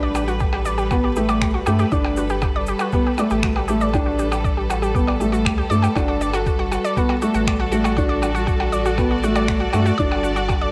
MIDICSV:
0, 0, Header, 1, 7, 480
1, 0, Start_track
1, 0, Key_signature, 1, "major"
1, 0, Tempo, 504202
1, 1827, Time_signature, 4, 2, 24, 8
1, 10204, End_track
2, 0, Start_track
2, 0, Title_t, "String section"
2, 0, Program_c, 0, 48
2, 0, Note_on_c, 0, 55, 80
2, 0, Note_on_c, 0, 67, 59
2, 0, Note_on_c, 0, 69, 85
2, 0, Note_on_c, 0, 71, 87
2, 5668, Note_off_c, 0, 67, 0
2, 5938, Note_on_c, 0, 66, 84
2, 7225, Note_on_c, 0, 74, 88
2, 7426, Note_off_c, 0, 71, 0
2, 10204, Note_off_c, 0, 55, 0
2, 10204, Note_off_c, 0, 66, 0
2, 10204, Note_off_c, 0, 69, 0
2, 10204, Note_off_c, 0, 74, 0
2, 10204, End_track
3, 0, Start_track
3, 0, Title_t, "Synth arpeggio sound"
3, 0, Program_c, 1, 84
3, 26, Note_on_c, 1, 74, 100
3, 97, Note_off_c, 1, 74, 0
3, 148, Note_on_c, 1, 67, 100
3, 190, Note_off_c, 1, 67, 0
3, 264, Note_on_c, 1, 66, 100
3, 308, Note_off_c, 1, 66, 0
3, 384, Note_on_c, 1, 67, 96
3, 491, Note_off_c, 1, 67, 0
3, 507, Note_on_c, 1, 67, 98
3, 577, Note_off_c, 1, 67, 0
3, 622, Note_on_c, 1, 74, 97
3, 695, Note_off_c, 1, 74, 0
3, 741, Note_on_c, 1, 67, 105
3, 786, Note_off_c, 1, 67, 0
3, 866, Note_on_c, 1, 66, 94
3, 908, Note_off_c, 1, 66, 0
3, 988, Note_on_c, 1, 67, 105
3, 1093, Note_off_c, 1, 67, 0
3, 1110, Note_on_c, 1, 67, 104
3, 1178, Note_off_c, 1, 67, 0
3, 1228, Note_on_c, 1, 74, 101
3, 1298, Note_off_c, 1, 74, 0
3, 1349, Note_on_c, 1, 67, 104
3, 1390, Note_off_c, 1, 67, 0
3, 1466, Note_on_c, 1, 66, 105
3, 1509, Note_off_c, 1, 66, 0
3, 1580, Note_on_c, 1, 67, 102
3, 1689, Note_off_c, 1, 67, 0
3, 1705, Note_on_c, 1, 67, 104
3, 1776, Note_off_c, 1, 67, 0
3, 1825, Note_on_c, 1, 74, 96
3, 1896, Note_off_c, 1, 74, 0
3, 1954, Note_on_c, 1, 67, 97
3, 1993, Note_off_c, 1, 67, 0
3, 2070, Note_on_c, 1, 66, 93
3, 2110, Note_off_c, 1, 66, 0
3, 2189, Note_on_c, 1, 67, 106
3, 2294, Note_off_c, 1, 67, 0
3, 2307, Note_on_c, 1, 67, 103
3, 2377, Note_off_c, 1, 67, 0
3, 2435, Note_on_c, 1, 74, 105
3, 2501, Note_off_c, 1, 74, 0
3, 2554, Note_on_c, 1, 67, 97
3, 2593, Note_off_c, 1, 67, 0
3, 2673, Note_on_c, 1, 66, 99
3, 2712, Note_off_c, 1, 66, 0
3, 2791, Note_on_c, 1, 67, 87
3, 2894, Note_off_c, 1, 67, 0
3, 2917, Note_on_c, 1, 67, 102
3, 2982, Note_off_c, 1, 67, 0
3, 3037, Note_on_c, 1, 74, 106
3, 3102, Note_off_c, 1, 74, 0
3, 3149, Note_on_c, 1, 67, 106
3, 3190, Note_off_c, 1, 67, 0
3, 3271, Note_on_c, 1, 66, 105
3, 3311, Note_off_c, 1, 66, 0
3, 3389, Note_on_c, 1, 67, 107
3, 3490, Note_off_c, 1, 67, 0
3, 3502, Note_on_c, 1, 67, 99
3, 3575, Note_off_c, 1, 67, 0
3, 3628, Note_on_c, 1, 74, 95
3, 3698, Note_off_c, 1, 74, 0
3, 3745, Note_on_c, 1, 67, 100
3, 3788, Note_off_c, 1, 67, 0
3, 3865, Note_on_c, 1, 66, 99
3, 3908, Note_off_c, 1, 66, 0
3, 3988, Note_on_c, 1, 67, 101
3, 4093, Note_off_c, 1, 67, 0
3, 4109, Note_on_c, 1, 67, 105
3, 4178, Note_off_c, 1, 67, 0
3, 4230, Note_on_c, 1, 74, 107
3, 4299, Note_off_c, 1, 74, 0
3, 4352, Note_on_c, 1, 67, 101
3, 4392, Note_off_c, 1, 67, 0
3, 4471, Note_on_c, 1, 66, 98
3, 4511, Note_off_c, 1, 66, 0
3, 4590, Note_on_c, 1, 67, 97
3, 4694, Note_off_c, 1, 67, 0
3, 4709, Note_on_c, 1, 67, 94
3, 4778, Note_off_c, 1, 67, 0
3, 4830, Note_on_c, 1, 74, 97
3, 4899, Note_off_c, 1, 74, 0
3, 4950, Note_on_c, 1, 67, 96
3, 4991, Note_off_c, 1, 67, 0
3, 5067, Note_on_c, 1, 66, 97
3, 5109, Note_off_c, 1, 66, 0
3, 5188, Note_on_c, 1, 67, 101
3, 5293, Note_off_c, 1, 67, 0
3, 5310, Note_on_c, 1, 67, 107
3, 5379, Note_off_c, 1, 67, 0
3, 5425, Note_on_c, 1, 74, 100
3, 5496, Note_off_c, 1, 74, 0
3, 5545, Note_on_c, 1, 67, 100
3, 5588, Note_off_c, 1, 67, 0
3, 5669, Note_on_c, 1, 66, 104
3, 5773, Note_off_c, 1, 66, 0
3, 5791, Note_on_c, 1, 66, 103
3, 5859, Note_off_c, 1, 66, 0
3, 5913, Note_on_c, 1, 74, 99
3, 5980, Note_off_c, 1, 74, 0
3, 6039, Note_on_c, 1, 66, 104
3, 6075, Note_off_c, 1, 66, 0
3, 6154, Note_on_c, 1, 66, 100
3, 6221, Note_off_c, 1, 66, 0
3, 6274, Note_on_c, 1, 66, 104
3, 6376, Note_off_c, 1, 66, 0
3, 6393, Note_on_c, 1, 66, 99
3, 6460, Note_off_c, 1, 66, 0
3, 6516, Note_on_c, 1, 74, 105
3, 6582, Note_off_c, 1, 74, 0
3, 6638, Note_on_c, 1, 66, 96
3, 6674, Note_off_c, 1, 66, 0
3, 6757, Note_on_c, 1, 66, 104
3, 6823, Note_off_c, 1, 66, 0
3, 6873, Note_on_c, 1, 66, 103
3, 6976, Note_off_c, 1, 66, 0
3, 6992, Note_on_c, 1, 66, 100
3, 7060, Note_off_c, 1, 66, 0
3, 7114, Note_on_c, 1, 74, 103
3, 7181, Note_off_c, 1, 74, 0
3, 7232, Note_on_c, 1, 66, 106
3, 7271, Note_off_c, 1, 66, 0
3, 7346, Note_on_c, 1, 66, 107
3, 7417, Note_off_c, 1, 66, 0
3, 7466, Note_on_c, 1, 66, 103
3, 7572, Note_off_c, 1, 66, 0
3, 7585, Note_on_c, 1, 66, 107
3, 7656, Note_off_c, 1, 66, 0
3, 7702, Note_on_c, 1, 74, 102
3, 7775, Note_off_c, 1, 74, 0
3, 7825, Note_on_c, 1, 66, 105
3, 7868, Note_off_c, 1, 66, 0
3, 7946, Note_on_c, 1, 66, 103
3, 8017, Note_off_c, 1, 66, 0
3, 8063, Note_on_c, 1, 66, 103
3, 8171, Note_off_c, 1, 66, 0
3, 8188, Note_on_c, 1, 66, 98
3, 8258, Note_off_c, 1, 66, 0
3, 8305, Note_on_c, 1, 74, 99
3, 8376, Note_off_c, 1, 74, 0
3, 8431, Note_on_c, 1, 66, 101
3, 8471, Note_off_c, 1, 66, 0
3, 8548, Note_on_c, 1, 66, 90
3, 8618, Note_off_c, 1, 66, 0
3, 8669, Note_on_c, 1, 66, 97
3, 8773, Note_off_c, 1, 66, 0
3, 8792, Note_on_c, 1, 66, 110
3, 8860, Note_off_c, 1, 66, 0
3, 8906, Note_on_c, 1, 74, 101
3, 8977, Note_off_c, 1, 74, 0
3, 9028, Note_on_c, 1, 66, 105
3, 9070, Note_off_c, 1, 66, 0
3, 9140, Note_on_c, 1, 66, 107
3, 9214, Note_off_c, 1, 66, 0
3, 9259, Note_on_c, 1, 66, 104
3, 9369, Note_off_c, 1, 66, 0
3, 9383, Note_on_c, 1, 66, 102
3, 9455, Note_off_c, 1, 66, 0
3, 9498, Note_on_c, 1, 74, 108
3, 9573, Note_off_c, 1, 74, 0
3, 9625, Note_on_c, 1, 66, 107
3, 9668, Note_off_c, 1, 66, 0
3, 9741, Note_on_c, 1, 66, 101
3, 9814, Note_off_c, 1, 66, 0
3, 9864, Note_on_c, 1, 66, 112
3, 9971, Note_off_c, 1, 66, 0
3, 9981, Note_on_c, 1, 66, 103
3, 10054, Note_off_c, 1, 66, 0
3, 10105, Note_on_c, 1, 74, 102
3, 10176, Note_off_c, 1, 74, 0
3, 10204, End_track
4, 0, Start_track
4, 0, Title_t, "Felt piano"
4, 0, Program_c, 2, 0
4, 0, Note_on_c, 2, 62, 91
4, 195, Note_off_c, 2, 62, 0
4, 868, Note_on_c, 2, 59, 93
4, 1013, Note_off_c, 2, 59, 0
4, 1112, Note_on_c, 2, 57, 77
4, 1400, Note_off_c, 2, 57, 0
4, 1590, Note_on_c, 2, 57, 82
4, 1734, Note_off_c, 2, 57, 0
4, 1825, Note_on_c, 2, 62, 94
4, 2116, Note_off_c, 2, 62, 0
4, 2791, Note_on_c, 2, 59, 100
4, 2935, Note_off_c, 2, 59, 0
4, 3030, Note_on_c, 2, 57, 79
4, 3319, Note_off_c, 2, 57, 0
4, 3514, Note_on_c, 2, 57, 80
4, 3657, Note_off_c, 2, 57, 0
4, 3755, Note_on_c, 2, 62, 100
4, 4043, Note_off_c, 2, 62, 0
4, 4710, Note_on_c, 2, 59, 89
4, 4854, Note_off_c, 2, 59, 0
4, 4957, Note_on_c, 2, 57, 76
4, 5244, Note_off_c, 2, 57, 0
4, 5434, Note_on_c, 2, 57, 77
4, 5577, Note_off_c, 2, 57, 0
4, 5672, Note_on_c, 2, 62, 88
4, 5960, Note_off_c, 2, 62, 0
4, 6634, Note_on_c, 2, 59, 92
4, 6777, Note_off_c, 2, 59, 0
4, 6874, Note_on_c, 2, 57, 76
4, 7162, Note_off_c, 2, 57, 0
4, 7352, Note_on_c, 2, 57, 78
4, 7495, Note_off_c, 2, 57, 0
4, 7595, Note_on_c, 2, 62, 91
4, 7882, Note_off_c, 2, 62, 0
4, 8546, Note_on_c, 2, 59, 95
4, 8691, Note_off_c, 2, 59, 0
4, 8796, Note_on_c, 2, 57, 78
4, 9083, Note_off_c, 2, 57, 0
4, 9272, Note_on_c, 2, 57, 82
4, 9415, Note_off_c, 2, 57, 0
4, 9513, Note_on_c, 2, 62, 100
4, 9801, Note_off_c, 2, 62, 0
4, 10204, End_track
5, 0, Start_track
5, 0, Title_t, "Analog synth bass"
5, 0, Program_c, 3, 38
5, 0, Note_on_c, 3, 33, 76
5, 1530, Note_off_c, 3, 33, 0
5, 1587, Note_on_c, 3, 43, 80
5, 1756, Note_off_c, 3, 43, 0
5, 1830, Note_on_c, 3, 31, 106
5, 2612, Note_off_c, 3, 31, 0
5, 3149, Note_on_c, 3, 33, 76
5, 5186, Note_off_c, 3, 33, 0
5, 5192, Note_on_c, 3, 38, 88
5, 5359, Note_off_c, 3, 38, 0
5, 5429, Note_on_c, 3, 43, 84
5, 5598, Note_off_c, 3, 43, 0
5, 5671, Note_on_c, 3, 31, 99
5, 6453, Note_off_c, 3, 31, 0
5, 6993, Note_on_c, 3, 33, 76
5, 9214, Note_off_c, 3, 33, 0
5, 9267, Note_on_c, 3, 43, 86
5, 9437, Note_off_c, 3, 43, 0
5, 9509, Note_on_c, 3, 31, 100
5, 10204, Note_off_c, 3, 31, 0
5, 10204, End_track
6, 0, Start_track
6, 0, Title_t, "Percussion blips"
6, 142, Note_on_c, 9, 77, 63
6, 237, Note_off_c, 9, 77, 0
6, 501, Note_on_c, 9, 77, 67
6, 596, Note_off_c, 9, 77, 0
6, 864, Note_on_c, 9, 77, 63
6, 959, Note_off_c, 9, 77, 0
6, 1225, Note_on_c, 9, 77, 62
6, 1320, Note_off_c, 9, 77, 0
6, 1585, Note_on_c, 9, 77, 67
6, 1681, Note_off_c, 9, 77, 0
6, 1947, Note_on_c, 9, 77, 68
6, 2042, Note_off_c, 9, 77, 0
6, 2302, Note_on_c, 9, 77, 65
6, 2397, Note_off_c, 9, 77, 0
6, 2658, Note_on_c, 9, 77, 66
6, 2754, Note_off_c, 9, 77, 0
6, 3027, Note_on_c, 9, 77, 66
6, 3122, Note_off_c, 9, 77, 0
6, 3387, Note_on_c, 9, 77, 64
6, 3482, Note_off_c, 9, 77, 0
6, 3747, Note_on_c, 9, 77, 61
6, 3842, Note_off_c, 9, 77, 0
6, 4112, Note_on_c, 9, 77, 59
6, 4208, Note_off_c, 9, 77, 0
6, 4478, Note_on_c, 9, 77, 60
6, 4573, Note_off_c, 9, 77, 0
6, 4839, Note_on_c, 9, 77, 60
6, 4935, Note_off_c, 9, 77, 0
6, 5201, Note_on_c, 9, 77, 62
6, 5296, Note_off_c, 9, 77, 0
6, 5557, Note_on_c, 9, 77, 59
6, 5653, Note_off_c, 9, 77, 0
6, 5679, Note_on_c, 9, 77, 67
6, 5774, Note_off_c, 9, 77, 0
6, 6031, Note_on_c, 9, 77, 60
6, 6126, Note_off_c, 9, 77, 0
6, 6397, Note_on_c, 9, 77, 61
6, 6493, Note_off_c, 9, 77, 0
6, 6751, Note_on_c, 9, 77, 58
6, 6846, Note_off_c, 9, 77, 0
6, 7117, Note_on_c, 9, 77, 65
6, 7213, Note_off_c, 9, 77, 0
6, 7474, Note_on_c, 9, 77, 62
6, 7569, Note_off_c, 9, 77, 0
6, 7833, Note_on_c, 9, 77, 66
6, 7928, Note_off_c, 9, 77, 0
6, 8188, Note_on_c, 9, 77, 62
6, 8283, Note_off_c, 9, 77, 0
6, 8548, Note_on_c, 9, 77, 67
6, 8643, Note_off_c, 9, 77, 0
6, 8906, Note_on_c, 9, 77, 65
6, 9001, Note_off_c, 9, 77, 0
6, 9266, Note_on_c, 9, 77, 66
6, 9361, Note_off_c, 9, 77, 0
6, 9631, Note_on_c, 9, 77, 68
6, 9726, Note_off_c, 9, 77, 0
6, 9989, Note_on_c, 9, 77, 65
6, 10085, Note_off_c, 9, 77, 0
6, 10204, End_track
7, 0, Start_track
7, 0, Title_t, "Drums"
7, 142, Note_on_c, 9, 82, 75
7, 237, Note_off_c, 9, 82, 0
7, 265, Note_on_c, 9, 82, 44
7, 361, Note_off_c, 9, 82, 0
7, 378, Note_on_c, 9, 82, 32
7, 388, Note_on_c, 9, 36, 101
7, 473, Note_off_c, 9, 82, 0
7, 483, Note_off_c, 9, 36, 0
7, 621, Note_on_c, 9, 82, 77
7, 716, Note_off_c, 9, 82, 0
7, 744, Note_on_c, 9, 82, 44
7, 839, Note_off_c, 9, 82, 0
7, 864, Note_on_c, 9, 82, 32
7, 867, Note_on_c, 9, 36, 103
7, 959, Note_off_c, 9, 82, 0
7, 962, Note_off_c, 9, 36, 0
7, 1104, Note_on_c, 9, 82, 76
7, 1199, Note_off_c, 9, 82, 0
7, 1225, Note_on_c, 9, 82, 43
7, 1320, Note_off_c, 9, 82, 0
7, 1347, Note_on_c, 9, 26, 80
7, 1347, Note_on_c, 9, 36, 102
7, 1347, Note_on_c, 9, 82, 32
7, 1442, Note_off_c, 9, 26, 0
7, 1442, Note_off_c, 9, 36, 0
7, 1442, Note_off_c, 9, 82, 0
7, 1585, Note_on_c, 9, 82, 76
7, 1681, Note_off_c, 9, 82, 0
7, 1702, Note_on_c, 9, 82, 45
7, 1797, Note_off_c, 9, 82, 0
7, 1825, Note_on_c, 9, 82, 35
7, 1827, Note_on_c, 9, 36, 109
7, 1920, Note_off_c, 9, 82, 0
7, 1922, Note_off_c, 9, 36, 0
7, 2062, Note_on_c, 9, 82, 69
7, 2157, Note_off_c, 9, 82, 0
7, 2184, Note_on_c, 9, 82, 43
7, 2279, Note_off_c, 9, 82, 0
7, 2302, Note_on_c, 9, 82, 34
7, 2307, Note_on_c, 9, 36, 101
7, 2397, Note_off_c, 9, 82, 0
7, 2402, Note_off_c, 9, 36, 0
7, 2538, Note_on_c, 9, 82, 78
7, 2633, Note_off_c, 9, 82, 0
7, 2658, Note_on_c, 9, 82, 43
7, 2754, Note_off_c, 9, 82, 0
7, 2782, Note_on_c, 9, 82, 30
7, 2786, Note_on_c, 9, 36, 114
7, 2877, Note_off_c, 9, 82, 0
7, 2881, Note_off_c, 9, 36, 0
7, 3027, Note_on_c, 9, 82, 78
7, 3122, Note_off_c, 9, 82, 0
7, 3144, Note_on_c, 9, 82, 45
7, 3239, Note_off_c, 9, 82, 0
7, 3266, Note_on_c, 9, 26, 80
7, 3266, Note_on_c, 9, 82, 35
7, 3267, Note_on_c, 9, 36, 104
7, 3361, Note_off_c, 9, 26, 0
7, 3361, Note_off_c, 9, 82, 0
7, 3362, Note_off_c, 9, 36, 0
7, 3505, Note_on_c, 9, 82, 82
7, 3600, Note_off_c, 9, 82, 0
7, 3626, Note_on_c, 9, 82, 42
7, 3721, Note_off_c, 9, 82, 0
7, 3747, Note_on_c, 9, 36, 110
7, 3747, Note_on_c, 9, 82, 33
7, 3842, Note_off_c, 9, 36, 0
7, 3842, Note_off_c, 9, 82, 0
7, 3987, Note_on_c, 9, 82, 73
7, 4083, Note_off_c, 9, 82, 0
7, 4112, Note_on_c, 9, 82, 44
7, 4208, Note_off_c, 9, 82, 0
7, 4229, Note_on_c, 9, 36, 96
7, 4235, Note_on_c, 9, 82, 33
7, 4324, Note_off_c, 9, 36, 0
7, 4330, Note_off_c, 9, 82, 0
7, 4478, Note_on_c, 9, 82, 76
7, 4573, Note_off_c, 9, 82, 0
7, 4598, Note_on_c, 9, 82, 43
7, 4694, Note_off_c, 9, 82, 0
7, 4711, Note_on_c, 9, 36, 111
7, 4717, Note_on_c, 9, 82, 32
7, 4806, Note_off_c, 9, 36, 0
7, 4812, Note_off_c, 9, 82, 0
7, 4958, Note_on_c, 9, 82, 81
7, 5053, Note_off_c, 9, 82, 0
7, 5078, Note_on_c, 9, 82, 46
7, 5174, Note_off_c, 9, 82, 0
7, 5192, Note_on_c, 9, 36, 105
7, 5201, Note_on_c, 9, 26, 70
7, 5201, Note_on_c, 9, 82, 32
7, 5287, Note_off_c, 9, 36, 0
7, 5296, Note_off_c, 9, 26, 0
7, 5296, Note_off_c, 9, 82, 0
7, 5440, Note_on_c, 9, 82, 74
7, 5535, Note_off_c, 9, 82, 0
7, 5557, Note_on_c, 9, 82, 44
7, 5653, Note_off_c, 9, 82, 0
7, 5672, Note_on_c, 9, 36, 105
7, 5679, Note_on_c, 9, 82, 33
7, 5767, Note_off_c, 9, 36, 0
7, 5774, Note_off_c, 9, 82, 0
7, 5914, Note_on_c, 9, 82, 69
7, 6009, Note_off_c, 9, 82, 0
7, 6031, Note_on_c, 9, 82, 39
7, 6126, Note_off_c, 9, 82, 0
7, 6152, Note_on_c, 9, 36, 99
7, 6153, Note_on_c, 9, 82, 30
7, 6247, Note_off_c, 9, 36, 0
7, 6248, Note_off_c, 9, 82, 0
7, 6397, Note_on_c, 9, 82, 74
7, 6493, Note_off_c, 9, 82, 0
7, 6519, Note_on_c, 9, 82, 41
7, 6614, Note_off_c, 9, 82, 0
7, 6632, Note_on_c, 9, 36, 100
7, 6635, Note_on_c, 9, 82, 31
7, 6727, Note_off_c, 9, 36, 0
7, 6730, Note_off_c, 9, 82, 0
7, 6873, Note_on_c, 9, 82, 75
7, 6968, Note_off_c, 9, 82, 0
7, 6989, Note_on_c, 9, 82, 40
7, 7084, Note_off_c, 9, 82, 0
7, 7110, Note_on_c, 9, 36, 99
7, 7117, Note_on_c, 9, 26, 73
7, 7117, Note_on_c, 9, 82, 32
7, 7205, Note_off_c, 9, 36, 0
7, 7213, Note_off_c, 9, 26, 0
7, 7213, Note_off_c, 9, 82, 0
7, 7352, Note_on_c, 9, 82, 73
7, 7447, Note_off_c, 9, 82, 0
7, 7474, Note_on_c, 9, 82, 41
7, 7569, Note_off_c, 9, 82, 0
7, 7589, Note_on_c, 9, 36, 108
7, 7594, Note_on_c, 9, 82, 29
7, 7685, Note_off_c, 9, 36, 0
7, 7689, Note_off_c, 9, 82, 0
7, 7833, Note_on_c, 9, 82, 70
7, 7928, Note_off_c, 9, 82, 0
7, 7954, Note_on_c, 9, 82, 37
7, 8049, Note_off_c, 9, 82, 0
7, 8069, Note_on_c, 9, 36, 102
7, 8070, Note_on_c, 9, 82, 30
7, 8164, Note_off_c, 9, 36, 0
7, 8165, Note_off_c, 9, 82, 0
7, 8308, Note_on_c, 9, 82, 68
7, 8404, Note_off_c, 9, 82, 0
7, 8430, Note_on_c, 9, 82, 42
7, 8525, Note_off_c, 9, 82, 0
7, 8547, Note_on_c, 9, 36, 98
7, 8548, Note_on_c, 9, 82, 30
7, 8642, Note_off_c, 9, 36, 0
7, 8643, Note_off_c, 9, 82, 0
7, 8790, Note_on_c, 9, 82, 74
7, 8885, Note_off_c, 9, 82, 0
7, 8906, Note_on_c, 9, 82, 39
7, 9001, Note_off_c, 9, 82, 0
7, 9027, Note_on_c, 9, 36, 93
7, 9028, Note_on_c, 9, 26, 66
7, 9028, Note_on_c, 9, 82, 31
7, 9123, Note_off_c, 9, 26, 0
7, 9123, Note_off_c, 9, 36, 0
7, 9123, Note_off_c, 9, 82, 0
7, 9266, Note_on_c, 9, 82, 71
7, 9361, Note_off_c, 9, 82, 0
7, 9387, Note_on_c, 9, 82, 39
7, 9482, Note_off_c, 9, 82, 0
7, 9508, Note_on_c, 9, 36, 99
7, 9512, Note_on_c, 9, 82, 31
7, 9603, Note_off_c, 9, 36, 0
7, 9607, Note_off_c, 9, 82, 0
7, 9748, Note_on_c, 9, 82, 68
7, 9844, Note_off_c, 9, 82, 0
7, 9866, Note_on_c, 9, 82, 37
7, 9962, Note_off_c, 9, 82, 0
7, 9989, Note_on_c, 9, 36, 94
7, 9989, Note_on_c, 9, 82, 30
7, 10084, Note_off_c, 9, 36, 0
7, 10085, Note_off_c, 9, 82, 0
7, 10204, End_track
0, 0, End_of_file